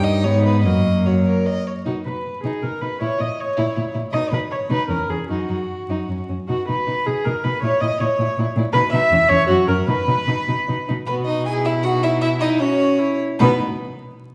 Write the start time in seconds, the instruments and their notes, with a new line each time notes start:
Already playing: cello G2, viola D#4, violin G4
0.04 violin D#5
0.24 cello G#2, viola B3, violin D#4 C#5
0.46 violin B4
0.64 cello F#2, viola A#3, violin F#4 D#5
1.06 violin F#4 C#5
1.26 violin A#4
1.46 violin D#5
1.67 violin C#5
1.85 cello B2, violin D#4 F#4, viola F#4
2.05 cello B2, violin D#4 B4, viola B4
2.43 cello B2, violin D#4 G#4, viola G#4
2.62 cello B2, violin D#4 A#4, viola A#4
2.81 cello B2, violin D#4 B4, viola B4
3.00 cello A#2, violin E4 C#5, viola C#5
3.18 cello A#2, violin E4 D#5, viola D#5
3.38 violin C#5, viola C#5
3.57 cello A#2, violin E4
3.76 cello A#2, violin E4
3.94 cello A#2, violin E4
4.12 cello B2, violin D#4 D#5, viola D#5
4.31 cello B2, violin D#4 B4, viola B4
4.50 violin C#5, viola C#5
4.70 cello B2, violin D#4 B4, viola B4
4.89 cello E2, violin C#4 A#4, viola A#4
5.09 cello E2, violin C#4 G#4, viola G#4
5.29 cello F#2, violin D#4 F#4, viola F#4
5.49 cello F#2, violin D#4
5.89 cello F#2, violin D#4
6.09 cello F#2, violin C#4
6.29 cello F#2, violin C#4
6.47 cello B2, violin D#4 F#4, viola F#4
6.68 cello B2, violin D#4 B4, viola B4
6.87 cello B2, violin D#4
7.06 cello B2, violin D#4 G#4, viola G#4
7.25 cello B2, violin D#4 A#4, viola A#4
7.44 cello B2, violin D#4 B4, viola B4
7.62 cello A#2, violin E4 C#5, viola C#5
7.81 cello A#2, violin E4 D#5, viola D#5
7.98 cello A#2, violin E4 C#5, viola C#5
8.19 cello A#2, violin E4
8.38 cello A#2, violin E4
8.56 cello A#2, violin E4
8.73 cello B2, violin D#4 B4, viola B4
8.90 cello B2, violin D#4 E5, viola E5
9.11 cello E2, violin C#4
9.28 cello E2, violin C#4 C#5, viola C#5
9.47 cello F#2, violin C#4 F#4, viola F#4
9.68 cello F#2, violin C#4 A#4, viola A#4
9.87 cello B2, violin D#4 B4, viola B4
10.08 cello B2, violin D#4
10.27 cello B2, violin D#4
10.48 cello B2, violin D#4
10.68 cello B2, violin D#4
10.88 cello B2, violin D#4
11.07 cello B2, violin B3 B4, viola F#4
11.25 violin D#4 D#5
11.46 viola E4, violin G#4 G#5
11.65 violin E4 E5
11.83 viola D#4, violin F#4 F#5
12.03 violin E4 E5
12.21 viola E4, violin E4 E5
12.40 violin D#4 D#5
12.60 violin C#4 C#5, viola F#4
12.99 viola E4
13.39 cello B2, violin B3 B4, viola D#4